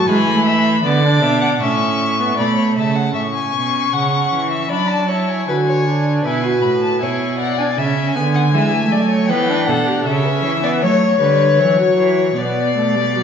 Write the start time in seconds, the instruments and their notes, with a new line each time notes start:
0.07 cello E3, viola G#3, violin G#5 B5
0.28 viola A3
0.45 violin E5
0.84 cello D3, viola B3, violin D5 D6
1.05 viola D4
1.22 cello B2, violin E5
1.41 violin F#5
1.60 cello A2, viola C#4, violin E5 C#6
2.20 viola B3
2.37 cello B2, viola A3, violin D5 B5
2.55 violin C#5
2.76 cello C#3, violin E5 A5
2.96 violin F#5
3.14 cello A2, viola C#4, violin E5 C#6
3.34 violin G#5
3.55 cello B2
3.93 cello C#3, violin F#5
4.33 cello E3
4.51 violin E5
4.69 cello F#3, viola D4, violin D5 B5
4.89 violin A5
5.08 viola E4, violin C#5 A5
5.29 violin G#5
5.48 cello D3, viola F#4, violin B4
5.67 violin C#5
5.87 viola D4
6.24 cello B2, viola E4, violin B4 G#5
6.44 viola F#4
6.62 cello A2, violin B5
6.80 violin A5
7.01 cello B2, viola E4, violin C#5 G#5
7.39 violin D5 F#5
7.58 viola D4, violin G#5
7.76 cello C#3, viola C#4, violin E5 G#5
8.16 cello D3, viola B3, violin G#5
8.34 violin F#5
8.53 cello E3, viola G#3, violin E5
8.72 viola A3
8.92 cello F#3, violin D5
9.10 violin C#5
9.29 cello E3, viola B3, violin B4 G5
9.49 viola D4
9.66 cello B2, violin A4 F#5
9.87 violin G4
10.04 cello C#3, viola C#4, violin A4 E5
10.25 violin B4
10.44 cello E3, violin C#5
10.63 viola B3, violin D5
10.82 cello F#3, viola A3, violin C#5
11.20 cello D3, viola G3, violin B4
11.59 viola E3, cello F#3, violin C#5
11.78 viola F#3
11.98 cello E3
12.36 cello B2, viola B3, violin D5
12.76 viola A3
12.95 viola G3
13.14 viola F#3